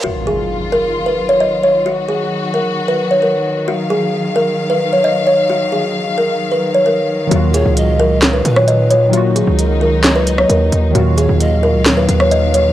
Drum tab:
HH |----------------|----------------|----------------|----------------|
CP |----------------|----------------|----------------|----------------|
SD |----------------|----------------|----------------|----------------|

HH |x-x-x---x-x-x-x-|x-x-x---x-x-x-x-|x-x-x---x-x-x-x-|
CP |--------x-------|--------x-------|--------x-------|
SD |--------o--r----|--------o--r----|--------o--r----|